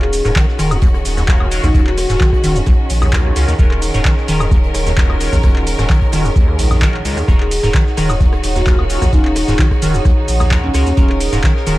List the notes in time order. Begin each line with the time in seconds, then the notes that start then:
Already playing: D#1 D#3 C#4 F4 F#4 G#4 A#4
0.02 G#4, clap
0.13 G#4, closed hi-hat, open hi-hat, shaker
0.25 D#1 G#2 C#4 F4 F#4 A#4, cross-stick, snare, shaker
0.34 D#3 C#5, kick, snare, clap, closed hi-hat, shaker
0.48 snare
0.59 D#1 D#3 C#4 F4 F#4 A#4, cross-stick, closed hi-hat, open hi-hat, shaker
0.71 D#2, high woodblock, shaker
0.82 D#2, kick, closed hi-hat, shaker
0.94 cross-stick, closed hi-hat
1.05 D#1, snare, closed hi-hat, open hi-hat, shaker
1.17 D#2, snare, shaker
1.28 D#2 C#4 F4 F#4 A#4, kick, cross-stick, snare, clap, closed hi-hat, shaker
1.38 D#2 F#5, high woodblock
1.51 C#4 F4 F#4 A#4, closed hi-hat, open hi-hat, shaker
1.63 A#1 D#2 D#4, cross-stick, shaker
1.74 D#1 D#2 C#4 F4 F#4 A#4, kick, closed hi-hat, shaker
1.87 F#4, clap
1.98 cross-stick, closed hi-hat, open hi-hat, shaker
2.09 D#1 G#2 C#4 F4 F#4 A#4, snare, shaker
2.20 D#3, kick, snare, clap, closed hi-hat, shaker
2.33 kick, cross-stick, closed hi-hat
2.44 D#1 D#3 C#4 F4 F#4 A#4, closed hi-hat, open hi-hat, shaker
2.56 D#2, shaker
2.66 A#1 D#2, kick, cross-stick, closed hi-hat, shaker
2.90 A#1, closed hi-hat, open hi-hat, shaker
3.02 D#2, cross-stick, high woodblock, shaker
3.13 D#2 C#4 F4 F#4 A#4, kick, snare, clap, closed hi-hat, shaker
3.25 D#2
3.36 C#2 C#4 F4 F#4 A#4, cross-stick, closed hi-hat, open hi-hat, shaker
3.48 D#2, shaker
3.59 D#1 D#2 C#4 F4 F#4 A#4, kick, closed hi-hat, shaker
3.71 cross-stick, clap
3.82 closed hi-hat, open hi-hat, shaker
3.94 D#1 G#2 C#4 F4 F#4 A#4, snare, shaker
4.05 D#3, kick, cross-stick, snare, clap, closed hi-hat, shaker
4.17 snare
4.28 D#1 D#3 C#4 F4 F#4 A#4, closed hi-hat, open hi-hat, shaker
4.40 D#2, cross-stick, high woodblock, shaker
4.51 D#2, kick, closed hi-hat, shaker
4.64 closed hi-hat
4.74 D#1, cross-stick, snare, closed hi-hat, open hi-hat, shaker
4.86 D#2, snare, shaker
4.97 D#2 C#4 F4 F#4 A#4, kick, snare, clap, closed hi-hat, shaker
5.10 D#2, cross-stick, high woodblock
5.20 C#4 F4 F#4 A#4, closed hi-hat, open hi-hat, shaker
5.33 A#1 D#2, shaker
5.43 D#1 D#2 C#4 F4 F#4 A#4, kick, cross-stick, closed hi-hat, shaker
5.56 clap
5.67 closed hi-hat, open hi-hat, shaker
5.79 D#1 G#2 C#4 F4 F#4 A#4, cross-stick, snare, shaker
5.89 D#3, kick, snare, clap, closed hi-hat, shaker
6.01 kick, closed hi-hat
6.12 D#1 D#3 C#4 F4 F#4 A#4, cross-stick, closed hi-hat, open hi-hat, shaker
6.25 D#2, shaker
6.36 A#1 D#2, kick, closed hi-hat, shaker
6.48 cross-stick
6.59 A#1 C#2, closed hi-hat, open hi-hat, shaker
6.71 F2, high woodblock, shaker
6.82 D#3 C#4 F4 F#4 A#4, kick, cross-stick, snare, clap, closed hi-hat, shaker
6.94 clap
7.05 C#2 C#4 F4 F#4 A#4, closed hi-hat, open hi-hat, shaker
7.17 F2, cross-stick, shaker
7.28 D#1 D#2 C#4 D#4 F4 F#4 A#4, kick, cross-stick, closed hi-hat, shaker
7.40 G#4, clap
7.51 G#4, closed hi-hat, open hi-hat, shaker
7.63 D#1 G#2 C#4 F4 F#4 A#4, cross-stick, snare, shaker
7.74 D#3, kick, snare, clap, closed hi-hat, shaker
7.86 snare
7.97 D#1 D#3 C#4 F4 F#4 A#4, cross-stick, closed hi-hat, open hi-hat, shaker
8.09 D#2, high woodblock, shaker
8.21 D#2, kick, closed hi-hat, shaker
8.33 cross-stick, closed hi-hat
8.43 D#1, snare, closed hi-hat, open hi-hat, shaker
8.56 D#2 F#4, snare, shaker
8.66 D#2 C#4 F4 F#4 A#4, kick, cross-stick, snare, clap, closed hi-hat, shaker
8.79 D#2, high woodblock
8.90 C#4 F4 F#4 A#4, closed hi-hat, open hi-hat, shaker
9.02 A#1 D#2, cross-stick, shaker
9.13 D#1 D#2 C#4 D#4 F4 F#4 A#4, kick, closed hi-hat, shaker
9.25 clap
9.36 cross-stick, closed hi-hat, open hi-hat, shaker
9.48 D#1 G#2 C#4 F4 F#4 A#4, snare, shaker
9.59 D#3, kick, snare, clap, closed hi-hat, shaker
9.71 kick, cross-stick, closed hi-hat
9.82 D#1 D#3 C#4 F4 F#4 A#4, closed hi-hat, open hi-hat, shaker
9.94 D#2, shaker
10.05 A#1 D#2, kick, cross-stick, closed hi-hat, shaker
10.28 A#1, closed hi-hat, open hi-hat, shaker
10.40 D#2, cross-stick, high woodblock, shaker
10.51 D#2 C#4 F4 F#4 A#4, kick, snare, clap, closed hi-hat, shaker
10.63 D#2 C#4
10.74 C#2 C#4 F4 F#4 A#4, cross-stick, closed hi-hat, open hi-hat, shaker
10.86 D#2, shaker
10.97 D#1 D#2 C#4 F4 F#4 A#4, kick, closed hi-hat, shaker
11.09 cross-stick, clap
11.21 closed hi-hat, open hi-hat, shaker
11.32 D#1 G#2 C#4 F4 F#4 A#4, snare, shaker
11.43 D#3, kick, cross-stick, snare, clap, closed hi-hat, shaker
11.56 snare
11.67 D#1 D#3 C#4 F4 F#4 A#4, closed hi-hat, open hi-hat, shaker